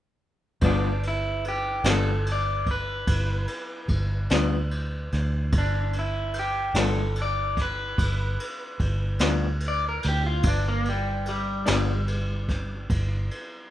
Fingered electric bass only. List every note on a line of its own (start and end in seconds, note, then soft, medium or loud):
0.62 1.81 G1 medium
1.84 3.03 G1 medium
3.08 3.46 G1 medium
3.88 4.27 G1 medium
4.31 5.09 D2 medium
5.13 5.50 D2 medium
5.52 6.72 G1 medium
6.74 7.94 G1 medium
7.98 8.36 G1 medium
8.80 9.18 G1 medium
9.20 9.99 D2 medium
10.05 10.42 D2 medium
10.44 11.63 G1 medium
11.68 12.87 G1 medium
12.91 13.28 G1 medium